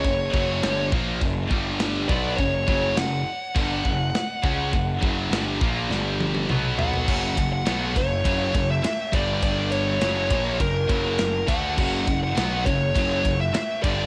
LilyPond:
<<
  \new Staff \with { instrumentName = "Lead electric guitar" } { \time 4/4 \tempo 4 = 102 cis''4. r2 d''8 | cis''8 cis''8 fis''2.~ | fis''2. r8 fis''8~ | fis''8. fis''8. cis''4~ cis''16 e''8. d''8 |
d''8 cis''4. ais'4. fis''8~ | fis''8. fis''8. cis''4~ cis''16 e''8. d''8 | }
  \new Staff \with { instrumentName = "Distorted electric guitar" } { \clef bass \time 4/4 <fis, cis>8 <fis, cis fis>8 <g, d g>8 <ais, eis ais>8 <fis, cis>8 <g, d g>4 <b, fis b>8 | <fis, cis>8 <fis, cis fis>8 <fis, cis>8 r8 <g, d g>8 <fis, cis>8 r8 <cis gis cis'>8 | <fis, cis>8 <fis, cis fis>8 <g, d g>8 <ais, eis ais>8 <g, d g>4 <b, fis b>4 | <fis, cis fis>8 <fis, cis>8 <b, fis b>8 <fis, cis>8 <fis, cis fis>8 <fis, cis>8 r8 <g, d g>8~ |
<g, d g>4 <fis, cis fis>8 <ais, eis ais>8 <fis, cis>8 <fis, cis fis>8 <fis, cis>8 <d a d'>8 | <fis, cis fis>8 <fis, cis>8 <b, fis b>8 <fis, cis>8 <fis, cis fis>8 <fis, cis>8 r8 <g, d g>8 | }
  \new Staff \with { instrumentName = "Distorted electric guitar" } { \clef bass \time 4/4 <fis, cis>8 <fis, cis fis>8 <g, d g>8 <ais, eis ais>8 <fis, cis>8 <g, d g>4 <b, fis b>8 | <fis, cis>8 <fis, cis fis>8 <fis, cis>8 r8 <g, d g>8 <fis, cis>8 r8 <cis gis cis'>8 | <fis, cis>8 <fis, cis fis>8 <g, d g>8 <ais, eis ais>8 <g, d g>4 <b, fis b>4 | <fis, cis fis>8 <fis, cis>8 <b, fis b>8 <fis, cis>8 <fis, cis fis>8 <fis, cis>8 r8 <g, d g>8~ |
<g, d g>4 <fis, cis fis>8 <ais, eis ais>8 <fis, cis>8 <fis, cis fis>8 <fis, cis>8 <d a d'>8 | <fis, cis fis>8 <fis, cis>8 <b, fis b>8 <fis, cis>8 <fis, cis fis>8 <fis, cis>8 r8 <g, d g>8 | }
  \new Staff \with { instrumentName = "Distorted electric guitar" } { \clef bass \time 4/4 <fis, cis>8 <fis, cis fis>8 <g, d g>8 <ais, eis ais>8 <fis, cis>8 <g, d g>4 <b, fis b>8 | <fis, cis>8 <fis, cis fis>8 <fis, cis>8 r8 <g, d g>8 <fis, cis>8 r8 <cis gis cis'>8 | <fis, cis>8 <fis, cis fis>8 <g, d g>8 <ais, eis ais>8 <g, d g>4 <b, fis b>4 | <fis, cis fis>8 <fis, cis>8 <b, fis b>8 <fis, cis>8 <fis, cis fis>8 <fis, cis>8 r8 <g, d g>8~ |
<g, d g>4 <fis, cis fis>8 <ais, eis ais>8 <fis, cis>8 <fis, cis fis>8 <fis, cis>8 <d a d'>8 | <fis, cis fis>8 <fis, cis>8 <b, fis b>8 <fis, cis>8 <fis, cis fis>8 <fis, cis>8 r8 <g, d g>8 | }
  \new Staff \with { instrumentName = "Picked electric bass" } { \clef bass \time 4/4 fis,,8 fis,,8 g,,8 ais,,8 fis,,8 g,,4 b,,8 | fis,,8 fis,,8 fis,,8 r8 g,,8 fis,,8 r8 cis,8 | fis,,8 fis,,8 g,,8 ais,,8 g,,4 b,,4 | fis,,8 fis,,8 b,,8 fis,,8 fis,,8 fis,,8 r8 g,,8~ |
g,,4 fis,,8 ais,,8 fis,,8 fis,,8 fis,,8 d,8 | fis,,8 fis,,8 b,,8 fis,,8 fis,,8 fis,,8 r8 g,,8 | }
  \new DrumStaff \with { instrumentName = "Drums" } \drummode { \time 4/4 <cymc bd>8 bd8 <cymc sn>8 bd8 <cymc bd>8 bd8 <cymc sn>8 bd8 | <cymc bd>8 bd8 <cymc sn>4 <cymc bd>8 bd8 <cymc sn>8 bd8 | <cymc bd>8 bd8 <cymc sn>8 bd8 sn8 tommh16 tommh16 toml8 tomfh16 tomfh16 | <cymc bd>8 <bd cymr>8 <cymr sn>8 <bd cymr>8 <bd cymr>8 <bd cymr>8 <cymr sn>8 <bd cymr>8 |
<bd cymr>8 cymr8 <cymr sn>8 <bd cymr>8 <bd cymr>8 <bd cymr>8 <cymr sn>8 <bd cymr>8 | <cymc bd>8 <bd cymr>8 <cymr sn>8 <bd cymr>8 <bd cymr>8 <bd cymr>8 <cymr sn>8 <bd cymr>8 | }
>>